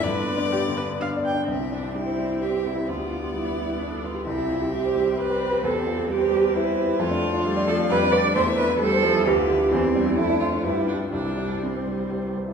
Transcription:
X:1
M:3/4
L:1/16
Q:1/4=130
K:C
V:1 name="Violin"
d8- d2 z2 | e4 g4 e4 | d12 | e8 d4 |
c4 B8 | A4 f4 d4 | e4 c4 B4 | c4 A4 B4 |
c8- c2 z2 |]
V:2 name="Cello"
D,8- D,2 z2 | C2 D2 E4 G2 E2 | F4 E4 D2 F2 | E4 G4 B4 |
A4 G4 E4 | F6 A2 B2 d2 | c2 B2 A4 G4 | C4 E2 F2 E2 D2 |
D4 C4 z4 |]
V:3 name="Grand piano"
(3G,,2 B,2 D2 (3B,2 D,2 B,2 (3D2 d2 D2 | C,, E D E G, c G, E c B c E | D,, G F G G, B G, G B A B G | C,, G F G G, c G, G c B c G |
E,, G F G G, c G, G c B c G | F,, D C D A, d A, D F,, D C D | E,, E D E G, c G, E D,, F E F | E,, E D E F,, D C D G,, F E F |
C,, E D E G, c G, E c B c E |]
V:4 name="Viola" clef=bass
B4 G2 B2 f2 g2 | C12 | B,12 | C12- |
C12 | A,4 G,2 F,2 G,4 | A,4 G,2 F,2 E,2 D,2 | E,2 G,2 A,4 G,4 |
G,8- G,2 z2 |]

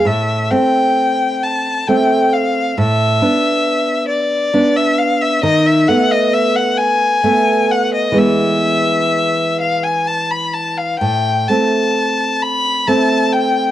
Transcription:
X:1
M:6/8
L:1/16
Q:3/8=44
K:Am
V:1 name="Violin"
e2 g4 a2 g2 f2 | e6 d3 e f e | ^d e ^f d e f ^g4 f d | e6 f ^g a b a f |
g2 a4 b2 a2 g2 |]
V:2 name="Nylon-string guitar"
A,,2 [A,C]6 [A,C]4 | A,,2 [B,D]6 [B,D]4 | ^D,2 [A,B,]6 [A,B,]4 | [E,^G,B,]12 |
A,,2 [A,C]6 [A,C]4 |]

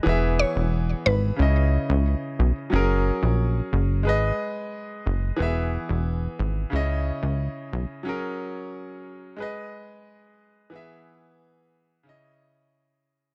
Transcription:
X:1
M:4/4
L:1/16
Q:1/4=90
K:F#mix
V:1 name="Synth pluck"
z2 c z3 B2 z8 | z16 | z16 | z16 |
z16 |]
V:2 name="Grand piano"
[E,B,Ge]8 [C,CEd]8 | [F,CGA]8 [G,GBd]8 | [E,B,Ge]8 [C,CEd]8 | [F,CGA]8 [G,GBd]8 |
[E,B,Ge]8 [C,CEd]8 |]
V:3 name="Analog synth bass" clef=bass
E,,,3 E,,,3 G,,,2 C,,3 C,,2 z B,,, z | F,,,3 A,,,3 F,,,2 G,,,2 z4 F,,,2 | E,,,3 E,,,3 G,,,2 C,,3 C,,2 z B,,, z | z16 |
z16 |]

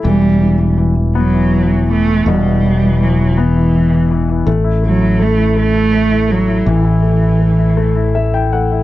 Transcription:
X:1
M:6/8
L:1/16
Q:3/8=54
K:Em
V:1 name="Grand piano"
z12 | z12 | z12 | z8 e g f2 |]
V:2 name="Grand piano"
E, E, E, E, E, E, B, E, E, E, E, E, | B,, E, E, E, E, E, B, E, E, E, E, E, | A, E A, E A, E A, E A, E A, E | E, E A, E A, E A, E A, E A, E |]
V:3 name="Cello" clef=bass
G,4 z2 F,4 A,2 | G,4 F,2 E,4 z2 | z2 F,2 A,2 A,4 F,2 | E,8- E,2 z2 |]
V:4 name="Fretless electric bass" clef=bass
E,,,12 | E,,,12 | A,,,12 | A,,,12 |]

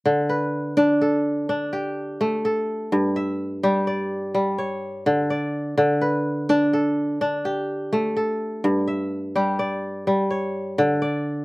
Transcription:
X:1
M:12/8
L:1/8
Q:3/8=84
K:Glyd
V:1 name="Kora"
z B2 D A3 G3 A2- | A e2 G d3 c3 d2- | d B2 D A3 G3 A2- | A e2 G d3 c3 d2 |]
V:2 name="Kora" clef=bass
D,2 z D2 z D2 z A,2 z | G,,2 z G,2 z G,2 z D,2 z | D,2 z D2 z D2 z A,2 z | G,,2 z G,2 z G,2 z D,2 z |]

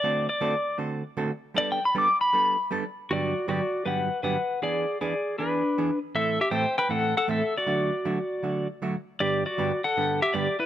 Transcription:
X:1
M:4/4
L:1/16
Q:"Swing" 1/4=157
K:G
V:1 name="Pedal steel guitar"
d2 d6 z8 | (3d2 g2 b2 d'2 b6 z4 | [Fd]4 [Fd]4 [Bf]4 [Bf]4 | [^Gd]4 [Gd]4 [DB]6 z2 |
[Ae]2 [Ge]2 [cg]2 [Bg]2 [Af]2 [Af]2 [Ae]2 [Fd]2- | [Fd]8- [Fd]2 z6 | [Gd]2 [Fd]4 [Af]4 [Ge]2 [Gd]2 [EB]2 |]
V:2 name="Hollow-body jazz guitar"
[D,A,CFA]2 z2 [D,A,CFA] z3 [D,A,CFA]2 z2 [D,A,CFA] z3 | [G,B,DA]2 z2 [G,B,DA] z3 [G,B,DA]2 z2 [G,B,DA] z3 | [G,,D,F,B,DG]2 z2 [G,,D,F,B,DG] z3 [G,,D,F,B,DG]2 z2 [G,,D,F,B,DG] z3 | [E,B,D^G]2 z2 [E,B,DG] z3 [E,B,DG]2 z2 [E,B,DG] z3 |
[A,,E,A,CEA]2 z2 [A,,E,A,CEA] z3 [A,,E,A,CEA]2 z2 [A,,E,A,CEA] z3 | [D,F,A,DF]2 z2 [D,F,A,DF] z3 [D,F,A,DF]2 z2 [D,F,A,DF] z3 | [G,,D,G,B,DG]2 z2 [G,,D,G,B,DG] z3 [G,,D,G,B,DG]2 z2 [G,,D,G,B,DG] z3 |]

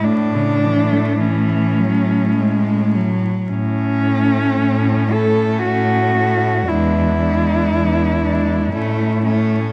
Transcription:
X:1
M:3/4
L:1/16
Q:1/4=56
K:A
V:1 name="Cello"
D4 C6 z2 | C6 A2 F4 | E8- E2 z2 |]
V:2 name="Cello"
A,8- A,2 z2 | z2 C4 C4 C2 | D2 D4 D2 C2 C2 |]
V:3 name="Cello" clef=bass
A,, C, E, A, E,2 F,2 G,2 F,2 | z2 A,4 A,4 A,2 | G,2 G,4 G,2 A,2 A,2 |]
V:4 name="Cello" clef=bass
A,,12 | A,,4 A,,4 A,,4 | E,,4 E,,4 A,,4 |]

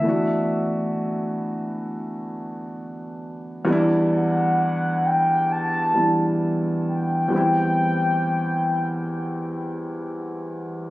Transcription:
X:1
M:4/4
L:1/8
Q:1/4=66
K:Em
V:1 name="Soft synth lead"
e3 z4 z | z f2 g a2 z g- | g6- g z |]
V:2 name="Grand piano"
[E,A,B,DF]8 | [E,,G,B,DE]4- [E,,G,B,DE] [E,,G,B,DE]3 | [E,,G,B,CE]8 |]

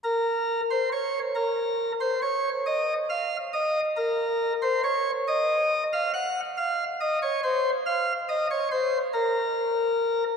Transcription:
X:1
M:12/8
L:1/16
Q:3/8=46
K:Bbm
V:1 name="Pipe organ"
B3 c d2 B3 c d2 e2 f2 e2 B3 c d2 | e3 f g2 f2 e d c2 f2 e d c2 B6 |]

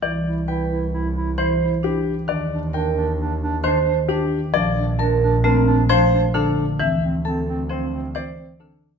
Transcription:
X:1
M:5/4
L:1/8
Q:1/4=133
K:C
V:1 name="Grand piano"
d z g z3 c z G z | d z g z3 c z G z | d z a z _B z c z A z | e z a z c z d z A z |]
V:2 name="Vibraphone"
z2 B z3 c z D z | z2 _B z3 c z D z | z2 _B z C z c z D z | z2 A z C z c z D z |]
V:3 name="Clarinet"
E E E E E E E E E z | D D D D D D D D D z | D D D D D D D D D z | C C C C C C C C C z |]
V:4 name="Marimba" clef=bass
E, z4 z E, z3 | _E, z4 z E, z3 | F, z3 A, z F, z D, z | E, z3 F, z E, z D, z |]
V:5 name="Double bass" clef=bass
C,,8- C,,2 | _E,,8- E,,2 | _B,,,8- B,,,2 | D,,8- D,,2 |]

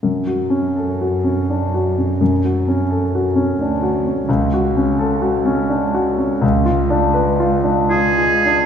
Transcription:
X:1
M:3/4
L:1/8
Q:1/4=84
K:F#m
V:1 name="Oboe"
z6 | z6 | z6 | z4 G2 |]
V:2 name="Grand piano"
(3F,, F C (3A F C (3D F C | (3F,, F C (3A F C (3D F C | (3C,, F C (3A F C (3D F C | (3C,, ^E D (3B E D (3E E D |]
V:3 name="French horn section" clef=bass
z6 | z6 | z6 | z4 G,2 |]
V:4 name="Cello section" clef=bass
F,,6- | F,,4 D,,2 | C,,6 | C,,4- C,, z |]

